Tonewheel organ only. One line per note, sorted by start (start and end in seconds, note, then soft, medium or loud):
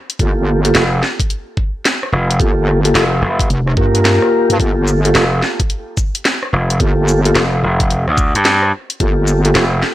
0.20 0.60 A#3 medium
0.20 0.61 F4 medium
0.20 0.60 G4 medium
0.20 0.60 A4 medium
0.65 0.84 A#3 medium
0.65 0.84 F4 medium
0.65 0.84 G4 medium
0.65 0.84 A4 loud
2.40 2.81 A#3 medium
2.40 2.81 F4 medium
2.40 2.81 G4 medium
2.40 2.81 A4 medium
2.85 3.04 A#3 medium
2.85 3.04 F4 medium
2.85 3.04 G4 medium
2.85 3.04 A4 loud
3.77 4.57 A#3 medium
3.77 4.57 F4 medium
3.77 4.57 G4 medium
3.77 4.57 A#4 loud
4.60 5.01 A#3 medium
4.60 5.01 F4 medium
4.60 5.01 G4 medium
4.60 5.01 A4 medium
5.05 5.24 A#3 medium
5.05 5.24 F4 medium
5.05 5.24 G4 medium
5.05 5.24 A4 loud
6.80 7.21 A#3 medium
6.80 7.21 F4 medium
6.80 7.21 G4 medium
6.80 7.21 A4 medium
7.25 7.45 A#3 medium
7.25 7.45 F4 medium
7.25 7.45 G4 medium
7.25 7.45 A4 loud
9.01 9.41 A#3 medium
9.01 9.41 F4 medium
9.01 9.41 G4 medium
9.01 9.41 A4 medium
9.45 9.65 A#3 loud
9.45 9.65 F4 medium
9.45 9.65 G4 medium
9.45 9.65 A4 loud